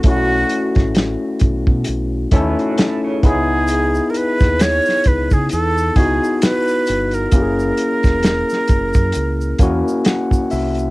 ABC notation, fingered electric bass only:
X:1
M:4/4
L:1/16
Q:"Swing 16ths" 1/4=66
K:C#m
V:1 name="Fingered electric bass" clef=bass
B,,,2 z A,,,2 z B,,, B,, B,,,2 D,, z3 C,,2- | C,,2 z D,,2 z C,, C, E,,2 C,, z3 =G,,,2 | F,,,2 z E,,,2 z F,,, F,, C,,2 E,, z3 ^B,,,2 |]